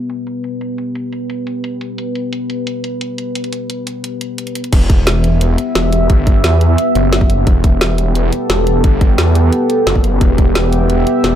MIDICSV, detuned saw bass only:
0, 0, Header, 1, 2, 480
1, 0, Start_track
1, 0, Key_signature, 1, "minor"
1, 0, Tempo, 342857
1, 855, Time_signature, 4, 2, 24, 8
1, 15894, End_track
2, 0, Start_track
2, 0, Title_t, "Detuned saw bass"
2, 0, Program_c, 0, 39
2, 6616, Note_on_c, 0, 28, 96
2, 7797, Note_off_c, 0, 28, 0
2, 8055, Note_on_c, 0, 28, 100
2, 8516, Note_off_c, 0, 28, 0
2, 8536, Note_on_c, 0, 31, 98
2, 8997, Note_off_c, 0, 31, 0
2, 9016, Note_on_c, 0, 40, 94
2, 9477, Note_off_c, 0, 40, 0
2, 9735, Note_on_c, 0, 30, 93
2, 10436, Note_off_c, 0, 30, 0
2, 10456, Note_on_c, 0, 28, 97
2, 11637, Note_off_c, 0, 28, 0
2, 11896, Note_on_c, 0, 28, 97
2, 12357, Note_off_c, 0, 28, 0
2, 12376, Note_on_c, 0, 31, 98
2, 12837, Note_off_c, 0, 31, 0
2, 12856, Note_on_c, 0, 40, 99
2, 13316, Note_off_c, 0, 40, 0
2, 13816, Note_on_c, 0, 30, 96
2, 14277, Note_off_c, 0, 30, 0
2, 14296, Note_on_c, 0, 28, 99
2, 15477, Note_off_c, 0, 28, 0
2, 15735, Note_on_c, 0, 28, 102
2, 15894, Note_off_c, 0, 28, 0
2, 15894, End_track
0, 0, End_of_file